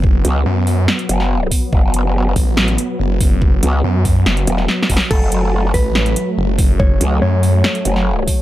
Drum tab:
CC |------------------------------------------------|------------------------------------------------|------------------------------------------------|x-----------------------------------------------|
HH |------x-----------o--------x--x-----------o-----|------x-----------o--------x--x-----------o-----|------x-----------o--------x--x-----------o-----|------x-----------o--------x--x-----------o-----|
SD |------------------------o--------o--------------|------------------------o-----------------------|------------------------o--------o--o---o---o---|------------------------o-----------------------|
BD |o-----------------------------------------o-----|o-----------------o-----------------------o-----|o-----------------o-----------------------o-----|o-----------------o-----------------------o-----|

CC |------------------------------------------------|
HH |------x-----------o--------x--x-----------o-----|
SD |------------------------o--------o--------------|
BD |o-----------------------------------------o-----|